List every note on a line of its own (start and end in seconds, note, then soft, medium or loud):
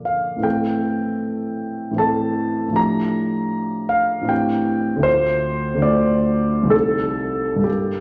0.00 0.35 A#2 soft
0.00 0.37 D3 soft
0.00 0.38 F3 soft
0.00 0.38 A#3 soft
0.00 0.39 A4 soft
0.05 0.44 F5 medium
0.36 1.90 A2 soft
0.36 1.91 E3 soft
0.36 1.93 A3 soft
0.42 1.95 C4 soft
0.42 1.96 A4 soft
0.42 2.00 G5 medium
1.91 2.66 A2 soft
1.91 2.71 E3 soft
1.91 2.71 A3 soft
1.96 2.73 C4 soft
1.96 2.74 A4 soft
1.96 2.76 A5 medium
2.68 4.20 A2 soft
2.68 4.23 F3 soft
2.72 4.24 A3 soft
2.72 4.25 D4 soft
2.72 4.26 G4 soft
2.72 3.92 A#5 medium
3.89 4.29 F5 medium
4.21 4.99 A2 soft
4.21 5.00 E3 soft
4.21 5.01 C4 soft
4.27 5.00 D4 soft
4.27 5.03 G4 soft
4.27 4.68 G5 medium
4.96 5.73 D2 soft
4.96 5.75 D3 soft
4.96 5.77 A3 soft
5.02 5.79 D4 soft
5.02 5.80 F4 soft
5.02 5.84 C5 medium
5.75 6.65 D2 soft
5.75 6.66 D3 soft
5.75 6.67 A3 soft
5.81 6.68 D4 soft
5.81 6.69 F4 soft
5.81 6.72 D5 medium
6.63 7.59 C2 soft
6.63 7.57 G3 soft
6.63 7.61 C4 soft
6.69 7.62 D#4 soft
6.69 7.62 G4 soft
6.69 7.63 A4 medium
7.56 8.00 G2 soft
7.56 8.00 G3 soft
7.60 8.00 A#3 soft
7.60 8.00 D4 soft
7.60 8.00 G4 medium
7.60 8.00 A4 soft